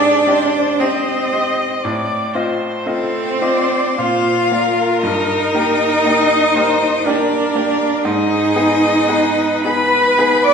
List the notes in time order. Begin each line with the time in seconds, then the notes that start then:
Already playing: G#2 C4 D4 G4 G#4 D5 D#5
0.26 C4 G4 C5 D#5
0.79 C4 G4 C5 D#5
1.33 C4 G4 D#5
1.83 A2 D5
2.34 C4 F4 C5 D#5
2.84 C4 F4 A4 C5 D#5
3.41 C4 F4 D5 D#5
3.98 A#2 F4 C5 F5
4.51 A#3 F4 A#4 D5
5.02 G2 D#4 D#5
5.55 A#3 G4 A#4
6.04 A#3 G4 A#4 D#5
6.55 A#3 G4 A#4 C5
7.05 A#3 D4 G4 A#4 D5
7.55 A#3 G4 A#4
8.04 G#2 D#4 G#4 D#5
8.55 B3 D#4 G#4
9.08 B3 D#4 G#4 B4
9.64 B3 D#4 G#4 B4 B5
10.17 B3 D#4 G#4
10.44 D5 D6